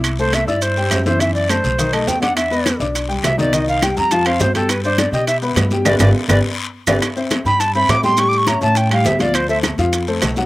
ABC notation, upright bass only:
X:1
M:4/4
L:1/8
Q:1/4=206
K:G
V:1 name="Upright bass" clef=bass
C,,3 G,,3 F,,2- | F,,3 B,,,3 E,,2- | E,,3 B,,,3 C,,2- | C,,3 =F,,3 G,,2- |
G,,3 B,,3 G,,2 | G,,, G,,, z G,,, z3 G,,, | [K:C] z3 G,,3 A,,2- | A,,3 A,,3 D,,2- |
D,,3 F,,3 B,,,2 |]